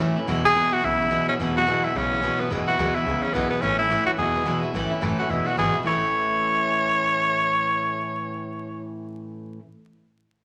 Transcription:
0.00 steel-string acoustic guitar A2 E3 A3 C#4 E4
0.16 steel-string acoustic guitar A3 C#4 E4, muted upright bass stroke
0.27 upright bass E1, steel-string acoustic guitar E2 B2 E3 G#3 B3 E4
0.44 steel-string acoustic guitar G#3 B3 E4, tenor saxophone G#4
0.55 steel-string acoustic guitar E2 B2 E3 G#3 B3 E4
0.71 steel-string acoustic guitar E3 G#3 B3 E4, tenor saxophone F#4, muted upright bass stroke
0.82 upright bass B1, clean electric guitar E2 C#3, steel-string acoustic guitar E3 G#3 B3 E4, tenor saxophone E4
0.99 steel-string acoustic guitar E3 G#3 B3 E4
1.11 steel-string acoustic guitar E2 B2 E3 G#3 B3 E4
1.28 steel-string acoustic guitar E3 G#3 B3 E4, tenor saxophone C#4, muted upright bass stroke
1.39 upright bass E1, steel-string acoustic guitar E2 B2 E3 G#3 B3 E4
1.56 steel-string acoustic guitar E3 G#3 B3 E4, tenor saxophone F#4
1.67 steel-string acoustic guitar E2 B2 E3 G#3 B3 E4
1.83 steel-string acoustic guitar E3 G#3 B3 E4, tenor saxophone E4, muted upright bass stroke
1.95 upright bass B1, clean electric guitar E2 C#3, steel-string acoustic guitar E3 G#3 B3 E4, tenor saxophone C#4
2.11 steel-string acoustic guitar E3 G#3 B3 E4
2.22 steel-string acoustic guitar E2 B2 E3 G#3 B3 E4
2.39 steel-string acoustic guitar E3 G#3 B3 E4, tenor saxophone B3
2.50 upright bass E1, steel-string acoustic guitar E2 B2 E3 G#3 B3 E4
2.67 steel-string acoustic guitar E3 G#3 B3 E4, tenor saxophone F#4, muted upright bass stroke
2.78 upright bass D2, steel-string acoustic guitar E2 B2 E3 G#3 B3 E4
2.95 steel-string acoustic guitar E3 G#3 B3 E4, tenor saxophone E4
3.06 upright bass C#2, clean electric guitar E2 C#3, steel-string acoustic guitar E3 G#3 B3 E4
3.22 steel-string acoustic guitar E3 G#3 B3 E4, tenor saxophone C#4, muted upright bass stroke
3.33 upright bass B1, steel-string acoustic guitar E2 B2 E3 G#3 B3 E4, tenor saxophone B3
3.50 steel-string acoustic guitar E3 G#3 B3 E4, tenor saxophone B3
3.62 upright bass A1, steel-string acoustic guitar A2 E3 A3 C#4 E4, tenor saxophone C#4
3.78 steel-string acoustic guitar A3 C#4 E4, tenor saxophone E4
3.90 steel-string acoustic guitar A2 E3 A3 C#4 E4
4.05 steel-string acoustic guitar A3 C#4 E4, tenor saxophone F#4, muted upright bass stroke
4.17 upright bass E1, clean electric guitar E2 B2, steel-string acoustic guitar E3 G#3 B3 E4, tenor saxophone G#4
4.34 steel-string acoustic guitar E3 G#3 B3 E4
4.46 steel-string acoustic guitar E2 B2 E3 G#3 B3 E4
4.62 steel-string acoustic guitar E3 G#3 B3 E4, muted upright bass stroke
4.74 upright bass A1, steel-string acoustic guitar A2 E3 A3 C#4 E4
4.90 steel-string acoustic guitar A3 C#4 E4
5.01 upright bass F#1, steel-string acoustic guitar A2 E3 A3 C#4 E4
5.18 steel-string acoustic guitar A3 C#4 E4, tenor saxophone F#4
5.29 upright bass E1, clean electric guitar E2 B2, steel-string acoustic guitar E3 G#3 B3 E4, tenor saxophone E4
5.45 steel-string acoustic guitar E3 G#3 B3 E4, tenor saxophone F#4
5.57 upright bass G#1, steel-string acoustic guitar E2 B2 E3 G#3 B3 E4, tenor saxophone G#4
5.73 steel-string acoustic guitar E3 G#3 B3 E4, muted upright bass stroke
5.83 upright bass A1, steel-string acoustic guitar A2 E3, tenor saxophone C#5
5.88 steel-string acoustic guitar A3 C#4
5.92 steel-string acoustic guitar E4

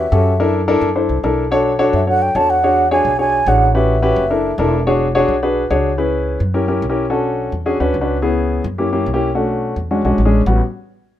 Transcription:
0.00 flute E5
0.12 upright bass F#2, grand piano C#4 F#4 G4 A4
0.40 grand piano D4 E4 A4 A#4
0.68 grand piano D4 E4 A4 A#4
0.81 upright bass F#2
0.95 grand piano D4 E4 A4 C5
1.09 upright bass C2
1.24 upright bass B1, grand piano D4 E4 A4 A#4
1.51 grand piano D4 F#4 A4 C#5
1.79 grand piano D4 F#4 A4 C#5
1.93 upright bass F#2, flute E5
2.07 grand piano D4 F#4 A4 C#5, flute F#5
2.22 flute G5
2.35 upright bass E2, grand piano D4 F#4 A4 C#5, flute A5
2.50 flute F#5
2.64 grand piano D4 F#4 G#4 C#5
2.91 grand piano D4 F#4 G#4 C#5, flute G#5
3.05 upright bass B1
3.19 grand piano D4 F#4 G#4 C#5, flute G#5
3.46 upright bass A1, grand piano D4 F#4 G#4 C#5, flute F#5
3.74 grand piano C#4 F#4 G4 B4, flute E5
4.02 grand piano C#4 F#4 G4 B4
4.16 upright bass F#1
4.30 grand piano D4 E4 A4 A#4
4.58 upright bass E1, grand piano D4 E4 A4 A#4
4.87 grand piano D4 F#4 G#4 C#5
5.15 grand piano D4 F#4 G#4 C#5
5.28 upright bass B1
5.43 grand piano D4 F#4 G#4 B4
5.70 upright bass C#2, grand piano D4 F#4 G#4 C#5
5.98 grand piano C#4 E4 G#4 B4
6.40 upright bass F#2
6.54 grand piano C#4 E4 G4 A#4
6.68 grand piano C#4 E4 G4 A#4
6.82 upright bass B1
6.89 grand piano C#4 E4 G4 A#4
7.10 grand piano C#4 D4 F#4 A4
7.52 upright bass E2
7.66 grand piano C#4 D4 F#4 G#4
7.80 upright bass D2, grand piano C#4 D4 F#4 B4
7.94 upright bass C#2
8.01 grand piano C#4 D4 F#4 B4
8.22 grand piano B3 C#4 E4 G#4
8.64 upright bass F#2
8.78 grand piano A#3 C#4 E4 G4
8.92 grand piano A#3 C#4 E4 G4
9.06 upright bass B1
9.13 grand piano A#3 C#4 E4 G4
9.35 grand piano A3 C#4 D4 F#4
9.76 upright bass E2
9.91 grand piano G#3 C#4 D4 F#4
10.05 upright bass B1, grand piano G#3 C#4 D4 F#4
10.18 upright bass A1
10.25 grand piano G#3 C#4 D4 G#4
10.46 upright bass A1, grand piano G3 B3 C#4 F#4

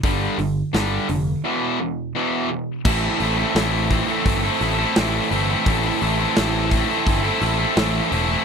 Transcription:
0.03 picked electric bass G1, overdriven electric guitar G2 D3 G3, kick, open hi-hat
0.38 picked electric bass G1, overdriven electric guitar G2 D3, open hi-hat
0.73 picked electric bass G1, overdriven electric guitar G2 D3 G3, snare, open hi-hat
1.09 picked electric bass F1, overdriven electric guitar G2 D3, open hi-hat
1.44 overdriven electric guitar E2 B2 E3
1.80 overdriven electric guitar E2 B2
2.16 overdriven electric guitar E2 B2 E3
2.51 overdriven electric guitar E2 B2
2.85 picked electric bass A1, overdriven electric guitar A2 E3 A3 C4 E4 A4, kick, crash
3.03 distorted electric guitar A3 C4 E4
3.20 picked electric bass A1, distorted electric guitar E3, overdriven electric guitar A3 C4 E4 A4, open hi-hat
3.38 overdriven electric guitar A3 C4 E4 A4
3.55 picked electric bass A1, overdriven electric guitar A2 E3 A3 C4 E4 A4, snare, open hi-hat
3.90 distorted electric guitar E3 A3 C4 E4, kick, open hi-hat
4.09 overdriven electric guitar A3 C4 E4 A4
4.25 picked electric bass G1, kick, open hi-hat
4.43 overdriven electric guitar A3 C4 E4 A4
4.60 picked electric bass A1, overdriven electric guitar A3 C4 E4 A4, open hi-hat
4.78 overdriven electric guitar A3 C4 E4 A4
4.96 picked electric bass A1, overdriven electric guitar A2 E3 A3 C4 E4 A4, snare, open hi-hat
5.30 picked electric bass G1, distorted electric guitar E3, overdriven electric guitar A3 C4 E4 A4, open hi-hat
5.49 overdriven electric guitar A3 C4 E4 A4
5.66 picked electric bass A1, overdriven electric guitar A2 E3 A3 C4 E4 A4, kick, open hi-hat
5.83 distorted electric guitar A3 C4 E4
6.00 picked electric bass A1, distorted electric guitar E3, overdriven electric guitar A3 C4 E4 A4, open hi-hat
6.19 overdriven electric guitar A3 C4 E4 A4
6.36 picked electric bass A1, overdriven electric guitar A2 E3 A3 C4 E4 A4, snare, open hi-hat
6.70 distorted electric guitar E3 A3 C4 E4, kick, open hi-hat
6.89 overdriven electric guitar A3 C4 E4 A4
7.07 picked electric bass G1, kick, open hi-hat
7.23 overdriven electric guitar A3 C4 E4 A4
7.40 picked electric bass A1, overdriven electric guitar A3 C4 E4 A4, open hi-hat
7.59 overdriven electric guitar A3 C4 E4 A4
7.76 picked electric bass A1, overdriven electric guitar A2 E3 A3 C4 E4 A4, snare, open hi-hat
8.11 picked electric bass E1, distorted electric guitar E3, overdriven electric guitar A3 C4 E4 A4, open hi-hat
8.28 overdriven electric guitar A3 C4 E4 A4

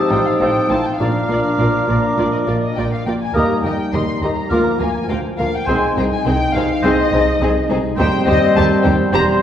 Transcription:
Already playing: french horn section F3 D#4, bassoon C4, clarinet G4, oboe A4, violin section A5, flute D#6
0.08 double bass section A1, cello section A2, viola section C4 D#4, violin section G5
0.12 violin section F4 C5
0.26 violin section F5
0.40 double bass section A1, cello section A2, viola section C4 D#4, bassoon C4, violin section F4 C5 G5, oboe A4
0.69 double bass section A1, cello section A2, viola section C4 D#4, violin section F4 C5 A5
0.85 violin section G5
0.97 double bass section A#1, cello section A#2, french horn section F3 D4, viola section A#3 F4, bassoon D4, clarinet F4, oboe A#4, violin section F5, flute D6
1.01 violin section A#4 D5
1.29 double bass section A#1, cello section A#2, viola section A#3 F4, violin section A#4 D5
1.58 double bass section A#1, cello section A#2, viola section A#3 F4, violin section A#4 D5
1.87 double bass section A#1, cello section A#2, viola section A#3 F4, violin section A#4 D5
2.17 double bass section A#1, cello section A#2, viola section A#3 F4, violin section A#4 D5
2.33 violin section D#5
2.47 double bass section A#1, cello section A#2, viola section A#3 F4, violin section A#4 D5
2.62 violin section D#5
2.76 double bass section A#1, cello section A#2, viola section A#3 F4, violin section A#4 D5 G5
2.93 violin section F5
3.06 double bass section A#1, cello section A#2, viola section A#3 F4, violin section A#4 D5 G5
3.21 violin section G#5
3.34 cello section D#2, double bass section D#2, french horn section G3 D#4, bassoon A#3, viola section A#3 G4, clarinet G4, oboe A#4, violin section A#4 D#5 A#5, flute D#6
3.63 cello section D#2, double bass section D#2, viola section A#3 G4, violin section A#4 D#5 G5
3.93 cello section D#2, double bass section D#2, viola section A#3 G4, violin section A#4 D#5 C6
4.22 cello section D#2, double bass section D#2, viola section A#3 G4, violin section A#4 D#5 A#5
4.50 cello section D2, double bass section D2, french horn section F3 F4, viola section A#3 F4, bassoon A#3, clarinet F4, oboe A#4, violin section A#4 F5, flute D6
4.79 cello section D2, double bass section D2, viola section A#3 F4, violin section A#4 F5 G#5
5.08 cello section D2, double bass section D2, viola section A#3 F4, violin section A#4 F5 G5
5.38 cello section D2, double bass section D2, viola section A#3 F4, violin section A#4 F5
5.55 violin section G5
5.66 double bass section C2, cello section C2, bassoon G#3, french horn section G#3 D#4, clarinet C4, viola section C4 D#4, violin section G#4 C5 G#5, oboe C5, flute C6
5.97 double bass section C2, cello section C2, viola section C4 D#4, violin section G#4 C5 G5
6.12 violin section G#5
6.25 cello section C2, double bass section C2, viola section C4 D#4, violin section G#4 C5 G5
6.54 cello section C2, double bass section C2, viola section C4 D#4, violin section G#4 C5 F5
6.83 cello section C2, double bass section C2, bassoon G#3, clarinet C4, viola section C4 D#4, violin section G#4 C5 D#5, oboe C5, flute C6
7.13 double bass section C2, cello section C2, viola section C4 D#4, violin section G#4 C5
7.41 double bass section C2, cello section C2, viola section C4 D#4, violin section G#4 C5
7.69 double bass section C2, cello section C2, viola section C4 D#4, violin section G#4 C5
7.96 cello section D#2, double bass section D#2, french horn section G3 C4, bassoon G3, viola section C4 D#4, clarinet C4, violin section G4 C5 G5, oboe C5, flute C6
8.26 cello section D#2, double bass section D#2, viola section C4 D#4, violin section G4 C5 D#5
8.56 cello section D#2, double bass section D#2, viola section C4 D#4, violin section G4 C5 A5
8.83 cello section D#2, double bass section D#2, viola section C4 D#4, violin section G4 C5 G5
9.12 double bass section E1, cello section E2, french horn section G3 C4, bassoon G3, viola section C4 G4, clarinet C4, violin section G4 C5 A#5, oboe C5, flute C6

